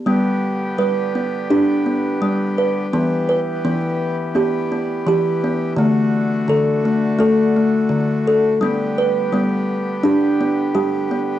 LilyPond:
<<
  \new Staff \with { instrumentName = "Accordion" } { \time 4/4 \key g \major \tempo 4 = 84 <b g'>1~ | <b g'>1 | <a fis'>1 | <b g'>1 | }
  \new Staff \with { instrumentName = "Accordion" } { \clef bass \time 4/4 \key g \major d1 | e1 | d1~ | d1 | }
  \new Staff \with { instrumentName = "Kalimba" } { \time 4/4 \key g \major << { b4 b'8 b8 g'8 b4 b'8 | b8 b'8 b4 g'8 b8 g'8 b8 | a4 a'8 a8 a'8 a4 a'8 | b8 b'8 b4 g'8 b8 g'8 b8 | } \\ { g4 g4 d'4 g4 | e4 e4 b4 e4 | d4 d4 a4 d4 | g4 g4 d'4 g4 | } >> }
>>